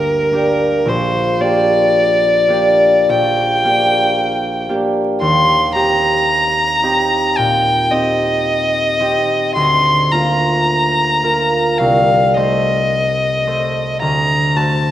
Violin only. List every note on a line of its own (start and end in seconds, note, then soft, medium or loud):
0.00 0.90 A#4 medium
0.88 1.42 C5 medium
1.41 3.12 D5 medium
3.10 4.69 G5 medium
5.21 5.71 C6 medium
5.76 7.38 A#5 medium
7.37 7.93 G5 medium
7.91 9.54 D#5 medium
9.54 10.13 C6 medium
10.12 11.80 A#5 medium
11.78 12.36 F5 medium
12.34 14.01 D#5 medium
14.02 14.58 A#5 medium
14.57 14.91 A5 medium